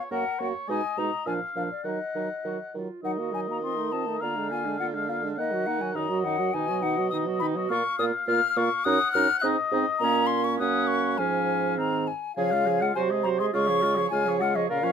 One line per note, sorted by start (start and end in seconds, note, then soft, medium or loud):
0.00 0.10 C#5 medium
0.11 0.24 F#2 medium
0.11 0.24 A#3 medium
0.11 0.24 F#4 medium
0.11 0.41 A#4 medium
0.11 0.48 F#5 medium
0.40 0.53 F#2 medium
0.40 0.53 A#3 medium
0.40 0.54 F#4 soft
0.40 0.70 C#5 medium
0.68 0.82 B2 medium
0.68 0.81 G#3 medium
0.68 0.83 D#4 medium
0.68 1.28 D#5 medium
0.68 1.00 G#5 medium
0.97 1.11 B2 medium
0.97 1.10 G#3 medium
0.97 1.11 D#4 medium
0.97 1.26 A#5 medium
1.26 1.39 A#2 medium
1.26 1.40 F3 soft
1.26 1.40 D4 soft
1.26 1.83 F5 medium
1.26 1.33 G#5 medium
1.56 1.69 A#2 medium
1.56 1.69 F3 soft
1.56 1.69 D4 soft
1.56 1.63 F5 medium
1.71 1.87 D5 medium
1.84 1.98 D#3 medium
1.84 1.98 F#3 soft
1.84 1.99 D#4 soft
1.84 2.75 D#5 medium
1.84 2.72 F#5 medium
2.15 2.28 D#3 medium
2.15 2.28 F#3 soft
2.15 2.29 D#4 soft
2.44 2.58 D#3 soft
2.44 2.58 F#3 soft
2.44 2.58 F#4 medium
2.74 2.88 D#3 soft
2.74 2.88 F#3 soft
2.74 3.02 F4 soft
3.03 4.24 D#3 medium
3.03 3.20 F#3 medium
3.03 3.20 D#4 medium
3.03 4.22 D#5 medium
3.03 3.11 F#5 medium
3.18 3.35 A#3 medium
3.18 3.35 F#4 soft
3.33 3.50 F#3 soft
3.33 3.50 D#4 medium
3.33 3.40 G#5 medium
3.48 3.61 A#3 soft
3.48 3.62 F#4 soft
3.48 3.57 A#5 medium
3.62 3.78 C4 medium
3.62 3.79 F4 soft
3.62 3.94 C6 medium
3.77 3.93 A3 soft
3.77 3.94 D#4 medium
3.92 4.08 C4 medium
3.92 4.09 F4 soft
3.92 4.20 A5 medium
4.06 4.21 A3 soft
4.06 4.21 D#4 soft
4.20 5.40 D3 medium
4.20 4.38 A#3 medium
4.20 4.38 F4 medium
4.20 5.37 F5 medium
4.20 4.50 A#5 medium
4.36 4.52 G#3 medium
4.36 4.53 D4 medium
4.51 4.67 A#3 medium
4.51 4.67 F4 medium
4.51 4.79 G#5 medium
4.65 4.78 G#3 medium
4.65 4.80 D4 medium
4.79 4.95 A#3 medium
4.79 4.96 F4 medium
4.79 4.86 F#5 medium
4.94 5.09 G#3 medium
4.94 5.11 D4 medium
5.08 5.24 A#3 medium
5.08 5.27 F4 medium
5.08 5.16 F5 medium
5.22 5.36 G#3 medium
5.22 5.38 D4 medium
5.37 5.98 D#3 medium
5.37 5.54 A#3 medium
5.37 5.54 D#4 medium
5.37 5.68 D#5 medium
5.37 5.97 F#5 medium
5.52 5.68 F#3 medium
5.52 5.68 F#4 medium
5.66 5.83 A#3 medium
5.66 5.83 D#4 medium
5.66 5.83 F#5 medium
5.81 5.94 F#3 medium
5.81 5.95 F#4 medium
5.81 5.93 G#5 medium
5.94 6.54 F#2 medium
5.94 6.10 D#3 medium
5.94 6.12 D#4 medium
5.94 6.53 D#5 medium
5.94 6.22 A#5 medium
6.09 6.26 F#3 medium
6.09 6.26 F#4 medium
6.23 6.40 D#3 medium
6.23 6.40 D#4 medium
6.23 6.55 F#5 medium
6.38 6.54 F#3 medium
6.38 6.53 F#4 medium
6.53 7.68 B2 medium
6.53 6.71 D#3 medium
6.53 6.69 D#4 medium
6.53 7.67 D#5 medium
6.53 6.84 G#5 loud
6.68 6.85 F#3 medium
6.68 6.83 F#4 medium
6.82 6.99 D#3 medium
6.82 6.99 D#4 medium
6.82 7.09 F#5 medium
6.98 7.11 F#3 medium
6.98 7.12 F#4 medium
7.10 7.28 D#3 medium
7.10 7.28 D#4 medium
7.10 7.17 D#6 loud
7.26 7.43 F#3 medium
7.26 7.43 F#4 medium
7.40 7.57 D#3 medium
7.40 7.58 D#4 medium
7.40 7.46 B5 loud
7.55 7.69 F#3 medium
7.55 7.70 F#4 medium
7.69 7.83 A#2 medium
7.69 7.83 A#3 medium
7.69 7.84 F4 medium
7.69 8.82 F5 medium
7.69 7.98 C#6 loud
7.99 8.12 A#2 medium
7.99 8.12 A#3 medium
7.99 8.13 F4 medium
7.99 8.05 D#6 loud
8.26 8.40 A#2 medium
8.26 8.41 A#3 medium
8.26 8.41 F4 medium
8.26 8.58 F6 loud
8.56 8.69 A#2 medium
8.56 8.69 A#3 medium
8.56 8.70 F4 medium
8.56 8.86 C#6 loud
8.84 8.98 F#2 loud
8.84 8.98 C#4 medium
8.84 8.99 D#4 medium
8.84 9.43 F#5 medium
8.84 9.12 D#6 loud
9.12 9.27 F#2 medium
9.12 9.28 C#4 medium
9.12 9.28 D#4 medium
9.12 9.39 F6 loud
9.39 9.56 G#2 medium
9.39 9.56 C4 medium
9.39 10.31 D#5 loud
9.39 9.46 F#6 loud
9.44 9.56 D#4 medium
9.71 9.84 G#2 medium
9.71 9.85 C4 medium
9.71 9.86 D#4 medium
9.99 10.55 A#2 medium
9.99 10.56 A#3 medium
9.99 10.56 C#4 medium
9.99 10.28 A#5 loud
10.27 10.46 C6 loud
10.44 10.59 C#6 loud
10.59 11.18 F#2 medium
10.59 11.20 A#3 medium
10.59 11.18 C#4 medium
10.59 11.20 F#5 medium
10.59 10.89 D#6 loud
10.87 11.19 C#6 loud
11.18 12.06 G#2 medium
11.18 11.80 F3 medium
11.18 11.79 C#4 medium
11.18 12.08 F5 medium
11.18 11.78 G#5 loud
11.78 12.08 D#3 medium
11.78 12.08 C4 medium
11.78 12.09 A#5 loud
12.07 12.35 G#5 medium
12.36 12.89 C#3 medium
12.36 12.53 F3 medium
12.36 12.54 G#4 medium
12.36 12.84 F5 loud
12.36 12.53 G#5 medium
12.51 12.68 G#3 medium
12.51 12.69 F4 medium
12.51 12.68 F5 medium
12.66 12.82 F3 medium
12.66 12.83 G#4 medium
12.66 12.83 G#5 medium
12.81 12.95 G#3 medium
12.81 12.95 F4 medium
12.81 12.95 F5 medium
12.81 12.94 F#5 loud
12.95 13.47 C3 loud
12.95 13.11 F#3 medium
12.95 13.13 F#4 medium
12.95 13.12 C5 medium
12.95 13.02 G#5 loud
13.10 13.26 G#3 medium
13.10 13.27 G#4 medium
13.10 13.26 D#5 medium
13.23 13.42 F#3 medium
13.23 13.41 F#4 medium
13.23 13.40 C5 medium
13.23 13.29 A#5 loud
13.39 13.53 G#3 medium
13.39 13.52 G#4 medium
13.39 13.53 D#5 medium
13.39 13.46 C6 medium
13.53 14.05 C#3 loud
13.53 13.70 G#3 medium
13.53 13.69 F4 medium
13.53 13.69 F5 medium
13.53 14.10 C#6 loud
13.67 13.85 F3 medium
13.67 13.84 G#4 medium
13.67 13.82 C#5 medium
13.81 13.99 G#3 medium
13.81 13.99 F4 medium
13.81 13.97 F5 medium
13.95 14.10 F3 medium
13.95 14.10 G#4 medium
13.95 14.11 C#5 medium
14.10 14.63 C#3 medium
14.10 14.27 G#3 medium
14.10 14.27 F4 medium
14.10 14.30 F5 medium
14.10 14.39 G#5 loud
14.26 14.42 F3 medium
14.26 14.42 G#4 medium
14.26 14.43 C#5 medium
14.40 14.57 G#3 medium
14.40 14.57 F4 medium
14.40 14.57 F5 medium
14.40 14.57 F#5 loud
14.55 14.70 F3 medium
14.55 14.69 G#4 medium
14.55 14.69 C#5 medium
14.55 14.69 D#5 medium
14.69 14.92 A#2 medium
14.69 14.85 C#3 medium
14.69 14.85 F4 medium
14.69 14.86 A#4 medium
14.69 14.92 F5 loud
14.83 14.92 F3 medium
14.83 14.92 C#4 medium
14.83 14.92 C#5 medium